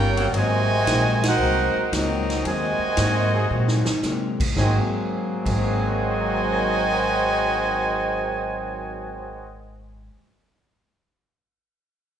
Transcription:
Already playing: upright bass G1, hollow-body jazz guitar D#3 G3 C#4 F4, trombone section A#3 C#4 G4, trumpet section F4 A#4 C#5 G5
0.16 trombone section F#3 A#3 C4 F#4, ride
0.33 upright bass G#1, hollow-body jazz guitar G#2 F#3, trombone section C3 D#3 F#3 G#3 A#3 C4 G#4, trumpet section F#4 C5 D#5 G#5, kick, ride
0.38 hollow-body jazz guitar A#3 C4
0.87 upright bass A#1, hollow-body jazz guitar G#2 F#3 A#3 C4, kick, snare, hi-hat pedal, ride
1.23 trombone section C4 D#4 F#4, snare, ride
1.28 trumpet section D#4 A#4 C5 F#5
1.39 upright bass C2, hollow-body jazz guitar G#2 F#3 A#3 C4
1.75 muted upright bass stroke
1.92 upright bass C#2, hollow-body jazz guitar G#2 F#3 A#3 C4, trombone section F#3 C4 D#4, trumpet section C4 F#4 A#4 D#5, kick, snare, hi-hat pedal, ride
2.30 snare, ride
2.44 upright bass D#2, hollow-body jazz guitar G#2 F#3 A#3, trombone section C3 D#3 F#3 G#3 A#3 C4 G#4, trumpet section G#5, kick, ride
2.48 hollow-body jazz guitar C4, trumpet section F#4 C5 D#5
2.79 muted upright bass stroke
2.97 upright bass G#2, hollow-body jazz guitar G#2 F#3 A#3 C4, kick, snare, hi-hat pedal, ride
3.33 trombone section F#3 A#3 C4 G#4
3.50 hollow-body jazz guitar G#2 F#3 A#3, upright bass A#2
3.55 hollow-body jazz guitar C4
3.68 snare
3.85 muted upright bass stroke, snare
4.03 hollow-body jazz guitar G#2 F#3 A#3 C4, upright bass C3, snare, hi-hat pedal
4.40 kick, crash
4.52 hollow-body jazz guitar G#2, trombone section F#3 A#3 C4 G#4
4.56 upright bass G#1, trombone section G#2 D#3 F#3 C4, hollow-body jazz guitar F#3, trumpet section F#4 C5 D#5 G#5, kick, snare
4.66 hollow-body jazz guitar A#3
4.72 hollow-body jazz guitar C4
5.42 upright bass G#1, hollow-body jazz guitar G#2, trombone section G#2 D#3 F#3 C4, kick, crash
5.48 hollow-body jazz guitar F#3, trumpet section F#4 C5 D#5 G#5
5.56 hollow-body jazz guitar A#3
5.61 hollow-body jazz guitar C4

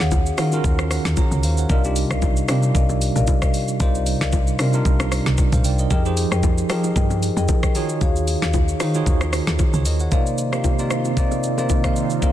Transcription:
Already playing: tine electric piano D#3 C#4 F#4 G#4 F5
0.00 log drum bass D#2, marimba G#4 C#5 F5 F#5, snare, shaker
0.11 kick, high bongo, low conga, shaker
0.26 shaker
0.38 log drum bass D#3, tine electric piano D#3 C#4 F4 F#4 A#4, marimba G#4 C#5 F5 F#5, cross-stick, open hi-hat, high bongo, shaker
0.52 tine electric piano D#3 C#4 F4 F#4 A#4, high bongo, shaker
0.64 log drum bass D#2, kick, low conga, shaker
0.79 cross-stick, low bongo, shaker
0.91 tine electric piano F#5, cross-stick, open hi-hat, shaker
1.05 log drum bass D#2, snare, low bongo, shaker
1.17 tine electric piano G#4 C#5 A#5, kick, high bongo, shaker
1.31 log drum bass C#2, shaker
1.43 log drum bass D#2, tine electric piano C5 F5, open hi-hat, shaker
1.57 tine electric piano C#5 F#5, shaker
1.69 log drum bass C2, tine electric piano C3 G3 D4 D#4 F4 A#4, marimba A#4 D5 D#5 F5, kick, low conga, shaker
1.84 tine electric piano C3 G3 D4 D#4 F4 G4, shaker
1.96 open hi-hat, shaker
2.10 log drum bass C2, marimba A#4 D5 D#5 F5, cross-stick, shaker
2.22 kick, high bongo, low conga, shaker
2.37 shaker
2.48 log drum bass C3, tine electric piano C3 G3 D4 D#4 F4 G4, marimba A#4 D5 D#5 F5, cross-stick, open hi-hat, shaker
2.63 high bongo, shaker
2.75 log drum bass C2, marimba A#4 D5 D#5 F5, kick, low conga, shaker
2.89 low bongo, shaker
3.01 open hi-hat, shaker
3.15 log drum bass A#1, marimba A#4 D5 D#5 F5, low bongo, shaker
3.27 kick, high bongo, shaker
3.42 marimba A#4 D5 D#5 F5, kick, cross-stick, shaker
3.54 open hi-hat, shaker
3.68 shaker
3.80 log drum bass C2, tine electric piano C3 G3 D#4 F4 C5 D5, marimba A#4 D5 D#5 F5, kick, low conga, shaker
3.95 shaker
4.06 open hi-hat, shaker
4.21 log drum bass C2, marimba A#4 D5 D#5 F5, snare, shaker
4.32 kick, high bongo, low conga, shaker
4.47 shaker
4.59 log drum bass C3, tine electric piano C3 G3 D4 D#4 F4 A#4, marimba A#4 D5 D#5 F5, cross-stick, open hi-hat, shaker
4.73 tine electric piano C3 G3 D4 D#4 F4 A#4, high bongo, shaker
4.85 log drum bass C2, kick, low conga, shaker
5.00 cross-stick, low bongo, shaker
5.12 cross-stick, open hi-hat, shaker
5.26 log drum bass C2, snare, low bongo, shaker
5.38 kick, high bongo, shaker
5.52 log drum bass A#1, tine electric piano C5 F5, kick, shaker
5.64 log drum bass C2, tine electric piano D5 G5, open hi-hat, shaker
5.78 tine electric piano A#4 D#5, shaker
5.90 log drum bass F2, tine electric piano F3 D#4 G4 G#4 A#4, marimba G#4 A#4 D#5 G5, kick, low conga, shaker
6.05 tine electric piano F3 D#4 G4 G#4 C5, shaker
6.17 open hi-hat, shaker
6.31 log drum bass F2, marimba G#4 A#4 D#5 G5, cross-stick, shaker
6.43 kick, high bongo, low conga, shaker
6.58 shaker
6.69 log drum bass F3, tine electric piano F3 D#4 G4 G#4 A#4, marimba G#4 A#4 D#5 G5, cross-stick, open hi-hat, shaker
6.84 high bongo, shaker
6.96 log drum bass G2, marimba G#4 A#4 D#5 G5, kick, low conga, shaker
7.10 low bongo, shaker
7.23 open hi-hat, shaker
7.36 log drum bass F2, marimba G#4 A#4 D#5 G5, low bongo, shaker
7.48 kick, high bongo, shaker
7.63 marimba G#4 A#4 D#5 G5, kick, cross-stick, shaker
7.75 tine electric piano D#3 D#4 F4 F#4 G#4 C#5, open hi-hat, shaker
7.89 shaker
8.01 log drum bass D#2, marimba F#4 G#4 C#5 F5, kick, low conga, shaker
8.16 shaker
8.28 open hi-hat, shaker
8.42 log drum bass D#2, marimba F#4 G#4 C#5 F5, snare, shaker
8.54 kick, high bongo, low conga, shaker
8.68 shaker
8.80 tine electric piano D#3 D#4 F4 F#4 G#4 C5, log drum bass D#3, marimba F#4 G#4 C#5 F5, cross-stick, open hi-hat, shaker
8.94 tine electric piano D#3 D#4 F4 F#4 G#4 C#5, high bongo, shaker
9.06 log drum bass D#2, kick, low conga, shaker
9.21 cross-stick, low bongo, shaker
9.33 cross-stick, open hi-hat, shaker
9.47 log drum bass D#2, snare, low bongo, shaker
9.59 kick, high bongo, shaker
9.74 log drum bass C#2, tine electric piano G#4 C#5, shaker
9.85 log drum bass D#2, tine electric piano A#4 D#5, open hi-hat, shaker
10.00 tine electric piano C#5 F#5, shaker
10.12 tine electric piano C3 A#3 D#4 F4 D5, analog synth pad D#3 A#3 C4 D#4 F4, marimba A#4 C5 D5 D#5 F5, kick, low conga, shaker
10.26 shaker
10.38 shaker
10.52 tine electric piano C3 A#3 D#4 F4 G4, marimba A#4 C5 D5 D#5 F5, cross-stick, low bongo, shaker
10.64 kick, high bongo, low conga, shaker
10.79 tine electric piano C3 A#3 D#4 F4 D5, shaker
10.90 marimba A#4 C5 D5 D#5 F5, cross-stick, high bongo, shaker
11.05 high bongo, shaker
11.17 tine electric piano C3 A#3 D#4 F4 D5, marimba A#4 C5 D5 D#5 F5, kick, low conga, shaker
11.31 low bongo, shaker
11.43 shaker
11.58 tine electric piano C3 A#3 D#4 F4 D5, marimba A#4 C5 D5 D#5 F5, low bongo, shaker
11.69 kick, high bongo, shaker
11.84 tine electric piano C3 A#3 D#4 F4 F5, marimba A#4 C5 D5 D#5 F5, kick, cross-stick, shaker
11.96 shaker
12.10 shaker
12.22 tine electric piano C3 A#3 D#4 F4 A#4, marimba A#4 C5 D5 D#5 F5, kick, low conga, shaker

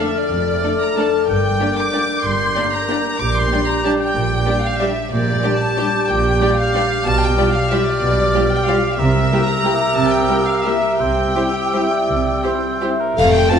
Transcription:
Already playing: harp F2 A3 A4 F5, clarinet A4, cor anglais D5, flute F6
0.00 viola section A3, french horn section A3, harp D5, violin section E5
0.16 harp A4, violin section D5
0.31 double bass section F1, cello section F2, harp F2
0.48 harp A3
0.63 viola section A3 D4, french horn section A3 D4, violin section A4 D5, harp D5
0.80 harp A4, violin section A#5
0.97 viola section A3 D4, french horn section A3 D4, violin section A4 D5 A5, harp D5
1.13 harp A4
1.28 double bass section G1, harp G2, cello section G2, clarinet A#4, cor anglais D5, violin section G5, flute G6
1.43 harp A#3
1.60 viola section A#3 D4, french horn section A#3 D4, violin section G4 D5
1.76 harp A#4, violin section D6
1.92 french horn section A#3 D4, viola section A#3 D4, violin section G4 D5
2.09 harp A#4
2.23 double bass section G1, cello section G2, harp G2, violin section C6
2.40 harp A#3
2.55 french horn section A#3 D4, viola section A#3 D4, violin section G4 D5
2.72 harp A#4, violin section A#5
2.89 viola section A#3 D4, french horn section A#3 D4, violin section G4 D5, harp D5
3.05 harp A#4
3.19 double bass section A#1, cello section A#2, harp A#2, clarinet G4, cor anglais D5, violin section D6, flute G6
3.35 harp G3, violin section C6
3.52 french horn section G3 D4, viola section G3 D4, violin section G4 D5
3.68 harp G4, violin section A#5
3.84 viola section G3 D4, french horn section G3 D4, violin section G4 D5 A5, harp D5
4.00 harp G4, violin section G5
4.15 double bass section A#1, harp A#2, cello section A#2
4.31 harp G3
4.46 viola section G3 D4, french horn section G3 D4, violin section G4 D5, harp D5
4.62 harp G4, violin section F5
4.79 french horn section G3 D4, viola section G3 D4, violin section G4 D5 E5, harp D5
4.96 harp G4
5.12 double bass section A#1, harp A#2, cello section A#2, clarinet G4, cor anglais D5, violin section D5, flute G6
5.27 harp G3
5.43 viola section G3 D4, french horn section G3 D4, violin section G4 D5, harp D5
5.59 harp G4, violin section A5
5.76 viola section G3 D4, french horn section G3 D4, violin section G4 D5, harp D5
5.91 harp G4
6.07 double bass section A#1, harp A#2, cello section A#2, violin section G5
6.23 harp G3
6.40 viola section G3 D4, french horn section G3 D4, violin section G4 D5
6.56 harp G4, violin section F5
6.73 french horn section G3 D4, viola section G3 D4, violin section G4 D5
6.90 harp G4
7.04 double bass section B1, cello section B2, harp B2, clarinet G4, cor anglais D5, violin section A5, flute F6
7.21 harp G3, violin section G5
7.36 french horn section G3 F4, viola section G3 F4, violin section G4 D5, harp D5
7.52 harp G4, violin section F5
7.70 french horn section G3 F4, viola section G3 F4, violin section G4 D5 E5
7.85 harp G4, violin section D5
8.02 double bass section B1, harp B2, cello section B2
8.18 harp G3
8.34 french horn section G3 F4, viola section G3 F4, violin section G4 D5
8.50 harp G4, violin section G5
8.67 viola section G3 F4, french horn section G3 F4, violin section G4 D5 F5
8.83 harp G4
8.97 double bass section C2, harp C3, cello section C3, clarinet G4, cor anglais A#4, violin section E5, flute E6
9.14 harp G3
9.31 viola section G3 E4, french horn section A#3 G4, violin section G4 A#4, harp A#4
9.48 harp G4, violin section A#5
9.64 viola section G3 E4, french horn section A#3 G4, violin section G4 A#4, harp E5
9.81 harp G4
9.95 double bass section C2, cello section C3, harp C3, violin section A5
10.11 harp G3, violin section G5
10.28 viola section G3 E4, french horn section A#3 G4, violin section G4 A#4, harp A#4
10.46 violin section F5
10.63 viola section G3 E4, french horn section A#3 G4, violin section G4 A#4 E5, harp E5
10.83 harp G4
10.98 double bass section C2, harp C3, cello section C3, clarinet G4, cor anglais C5, violin section G5, flute E6
11.17 harp G3
11.35 viola section G3 E4, french horn section C4 E4, cor anglais G4, violin section G4 C5, harp C5
11.73 viola section G3 E4, french horn section C4 E4, violin section G4 C5, harp E5
11.91 harp G4, cor anglais D5
12.09 double bass section C2, harp C3, cello section C3
12.26 harp G3
12.44 viola section G3 E4, french horn section C4 E4, violin section G4 C5, cor anglais C5, harp C5
12.64 harp G4
12.81 viola section G3 E4, french horn section C4 E4, violin section G4 C5
13.00 harp G4, cor anglais A#4
13.17 double bass section F1, harp F2, cello section F2, french horn section A4, violin section F5, concert bass drum, crash
13.27 harp F3
13.33 harp F4, violin section G5
13.43 harp C5
13.50 viola section A3 C4, french horn section F4, violin section F4 C5 A5, harp F4

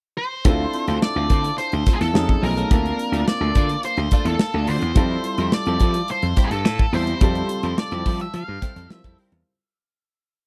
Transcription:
0.17 lead electric guitar C5
0.45 slap bass D2, clean electric guitar A3 C4 F4 A4, grand piano C4 D4 E4 F4 A4, kick, closed hi-hat
0.73 muted clean electric guitar stroke, closed hi-hat
0.88 slap bass D2, clean electric guitar A3 C4 F4 A4, closed hi-hat
1.02 lead electric guitar D5, muted clean electric guitar stroke, snare
1.16 slap bass D2, clean electric guitar A3 C4 F4 A4
1.30 slap bass D3, clean electric guitar A3 C4 F4 A4, kick, closed hi-hat
1.44 muted clean electric guitar stroke, closed hi-hat
1.58 lead electric guitar C5, muted clean electric guitar stroke, closed hi-hat
1.72 slap bass D2, muted clean electric guitar stroke, closed hi-hat
1.86 clean electric guitar A3 C4 F4 C5, kick, snare, closed hi-hat
1.94 lead electric guitar G#4
2.01 slap bass E2, lead electric guitar A4, muted clean electric guitar stroke, snare, closed hi-hat
2.13 slap bass F2, grand piano A3 C#4 D#4 F4 G#4, muted clean electric guitar stroke, snare
2.29 muted clean electric guitar stroke, kick
2.42 slap bass B1, clean electric guitar F3 A3 D#4 G#4, lead electric guitar A#4, open hi-hat
2.56 clean electric guitar F3 A3 D#4 A4, closed hi-hat
2.71 slap bass D2, clean electric guitar A3 D4 F4 A4, grand piano A#3 C4 D4 F4 A5, kick, closed hi-hat
2.86 closed hi-hat
2.99 muted clean electric guitar stroke, closed hi-hat
3.12 slap bass D2, clean electric guitar A3 D4 F4 A4, closed hi-hat
3.28 lead electric guitar D5, muted clean electric guitar stroke, snare
3.41 slap bass D2, clean electric guitar A3 D4 F4 A4
3.55 slap bass D3, clean electric guitar A3 D4 F4 A4, kick, closed hi-hat
3.69 muted clean electric guitar stroke, closed hi-hat
3.83 lead electric guitar C5, muted clean electric guitar stroke, closed hi-hat
3.97 slap bass D2, muted clean electric guitar stroke, closed hi-hat
4.11 clean electric guitar A3 D4 F4 A4, kick, closed hi-hat
4.25 slap bass E2, clean electric guitar A3 D4 F4 A4, lead electric guitar A4, closed hi-hat
4.39 muted clean electric guitar stroke, snare
4.54 slap bass D2, clean electric guitar A3 D4 F4 A4
4.67 slap bass D2, clean electric guitar A3 D4 F4 C5, lead electric guitar C5, open hi-hat
4.82 slap bass E2, muted clean electric guitar stroke, closed hi-hat
4.95 slap bass F2, grand piano G3 C4 E4 F4 A4, clean electric guitar G3 C4 E4 A4, kick, closed hi-hat
5.24 muted clean electric guitar stroke, closed hi-hat
5.38 slap bass F2, clean electric guitar G3 C4 E4 A4, closed hi-hat
5.52 lead electric guitar D5, muted clean electric guitar stroke, snare
5.66 slap bass F2, clean electric guitar G3 C4 E4 A4, closed hi-hat
5.80 slap bass F3, clean electric guitar G3 C4 E4 A4, kick, closed hi-hat
5.94 muted clean electric guitar stroke, closed hi-hat
6.08 lead electric guitar C5, muted clean electric guitar stroke, closed hi-hat
6.22 slap bass F2, muted clean electric guitar stroke, closed hi-hat
6.37 clean electric guitar G3 C4 E4 C5, kick, snare, closed hi-hat
6.44 lead electric guitar G#4
6.51 slap bass G2, lead electric guitar A4, muted clean electric guitar stroke, closed hi-hat
6.65 slap bass A2, muted clean electric guitar stroke, snare
6.79 muted clean electric guitar stroke, kick
6.93 slap bass E2, clean electric guitar G3 C4 E4 A4, lead electric guitar C5, open hi-hat
7.07 clean electric guitar G3 C4 E4 C5, closed hi-hat
7.21 slap bass F2, grand piano G3 C4 F4 G4 A4, clean electric guitar G3 C4 E4 A4, kick, closed hi-hat
7.35 closed hi-hat
7.49 muted clean electric guitar stroke, closed hi-hat
7.63 slap bass F2, clean electric guitar G3 C4 E4 A4, closed hi-hat
7.78 lead electric guitar D5, muted clean electric guitar stroke, snare
7.91 slap bass F2, clean electric guitar G3 C4 E4 A4, closed hi-hat
8.06 slap bass F3, clean electric guitar G3 C4 E4 A4, kick, open hi-hat
8.20 lead electric guitar E5, muted clean electric guitar stroke, closed hi-hat
8.34 slap bass F3, lead electric guitar F5, muted clean electric guitar stroke, closed hi-hat
8.48 slap bass G2, muted clean electric guitar stroke
8.62 clean electric guitar G3 C4 E4 A4, kick, snare, closed hi-hat
8.76 slap bass F2, clean electric guitar G3 C4 E4 A4, closed hi-hat
8.90 slap bass F3, grand piano G3 C4 E4 F4 A#4, lead electric guitar E5, muted clean electric guitar stroke, snare
8.97 grand piano C5
9.04 slap bass F2, clean electric guitar G3 C4 E4 A4, kick, closed hi-hat
9.18 clean electric guitar G3 C4 E4 C5, open hi-hat
9.32 slap bass E2, muted clean electric guitar stroke, closed hi-hat

